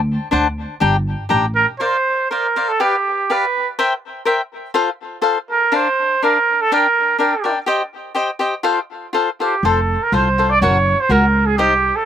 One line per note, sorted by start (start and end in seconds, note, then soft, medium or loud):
0.00 0.16 D2 medium
0.31 0.64 D2 medium
0.31 0.46 D4 medium
0.31 0.46 C5 medium
0.31 0.47 F#5 medium
0.31 0.47 A5 medium
0.80 1.13 G1 medium
0.80 0.95 D4 medium
0.80 0.95 G4 medium
0.80 0.96 G5 medium
0.80 0.96 A#5 medium
1.29 1.63 A1 medium
1.29 1.45 D4 medium
1.29 1.45 G4 medium
1.29 1.45 G5 medium
1.29 1.45 A#5 medium
1.55 1.66 A#4 medium
1.79 1.95 A#4 medium
1.79 2.26 C5 medium
1.79 1.96 C5 medium
1.79 1.96 D5 medium
1.79 1.96 F5 medium
2.31 2.70 A#4 medium
2.31 2.46 A#4 soft
2.31 2.46 C5 soft
2.31 2.46 D5 medium
2.31 2.46 F5 medium
2.56 2.70 A#4 soft
2.56 2.70 C5 soft
2.56 2.71 D5 medium
2.56 2.71 F5 medium
2.68 2.82 A4 medium
2.80 2.95 G4 medium
2.80 3.33 G4 medium
2.80 2.95 B4 medium
2.80 2.96 D5 medium
2.80 2.95 F5 medium
3.30 3.44 G4 soft
3.30 3.44 B4 medium
3.30 3.67 B4 medium
3.30 3.45 D5 medium
3.30 3.45 F5 medium
3.79 3.93 A#4 medium
3.79 3.93 C5 medium
3.79 3.93 E5 medium
3.79 3.93 G5 medium
4.25 4.40 A#4 medium
4.25 4.40 C5 medium
4.25 4.40 E5 medium
4.25 4.41 G5 medium
4.74 4.89 F4 medium
4.74 4.89 A4 medium
4.74 4.89 C5 medium
4.74 4.89 F5 medium
5.21 5.37 F4 soft
5.21 5.37 A4 medium
5.21 5.37 C5 medium
5.21 5.38 F5 medium
5.50 5.76 A#4 medium
5.72 5.87 D4 medium
5.72 5.87 A#4 medium
5.72 6.25 C5 medium
5.72 5.87 D5 medium
5.72 5.87 F5 medium
6.22 6.37 D4 medium
6.22 6.37 A#4 soft
6.22 6.62 A#4 medium
6.22 6.37 D5 soft
6.22 6.38 F5 medium
6.61 6.71 A4 medium
6.72 6.86 D4 medium
6.72 6.86 A#4 medium
6.72 7.17 A#4 medium
6.72 6.86 D5 medium
6.72 6.86 G5 medium
7.18 7.33 D4 medium
7.18 7.34 A#4 medium
7.18 7.53 A#4 medium
7.18 7.34 D5 medium
7.18 7.34 G5 medium
7.44 7.58 D4 medium
7.44 7.58 A#4 medium
7.44 7.58 D5 medium
7.44 7.58 G5 medium
7.66 7.81 G4 medium
7.66 7.82 C5 medium
7.66 7.82 D#5 medium
7.66 7.82 G5 medium
8.15 8.29 G4 medium
8.15 8.30 C5 medium
8.15 8.30 D#5 medium
8.15 8.30 G5 medium
8.39 8.54 G4 medium
8.39 8.54 C5 medium
8.39 8.54 D#5 medium
8.39 8.54 G5 medium
8.63 8.78 F4 medium
8.63 8.78 A4 medium
8.63 8.79 C5 medium
8.63 8.79 F5 medium
9.13 9.28 F4 medium
9.13 9.29 A4 medium
9.13 9.29 C5 medium
9.13 9.29 F5 medium
9.40 9.54 F4 soft
9.40 9.67 G4 medium
9.40 9.54 A4 soft
9.40 9.54 C5 soft
9.40 9.55 F5 medium
9.63 9.95 F1 medium
9.63 9.79 F4 medium
9.63 9.79 A4 medium
9.63 10.04 A4 medium
9.63 9.79 C5 medium
9.63 9.79 F5 medium
10.03 10.15 A#4 medium
10.12 10.63 C2 medium
10.12 10.27 F4 soft
10.12 10.28 A4 medium
10.12 10.28 C5 medium
10.12 10.51 C5 medium
10.12 10.28 F5 medium
10.38 10.52 F4 soft
10.38 10.52 A4 soft
10.38 10.53 C5 soft
10.38 10.53 F5 medium
10.50 10.60 D5 loud
10.61 10.93 F#1 medium
10.61 10.76 F#4 medium
10.61 10.77 A#4 medium
10.61 11.02 C#5 medium
10.61 10.77 C#5 medium
10.61 10.77 F#5 medium
11.00 11.13 C5 medium
11.09 11.58 C#2 medium
11.09 11.24 F#4 medium
11.09 11.25 A#4 medium
11.09 11.48 A#4 medium
11.09 11.25 C#5 medium
11.09 11.25 F#5 medium
11.46 11.57 G#4 medium
11.58 11.89 C2 medium
11.58 11.73 D#4 medium
11.58 11.97 G4 medium
11.58 11.73 G4 medium
11.58 11.73 C5 medium
11.58 11.73 D#5 medium
11.96 12.05 A4 medium